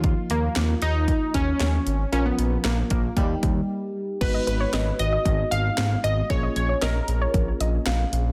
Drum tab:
CC |--------|--------|x-------|--------|
HH |xxxxxxxx|xxxxxx--|xxxxxxxx|xxxxxxxx|
CP |--x---x-|--x-----|--x---x-|--x---x-|
SD |--o---o-|--o-----|--o---o-|--o---o-|
BD |o---oo--|---ooo--|o---o---|o---o---|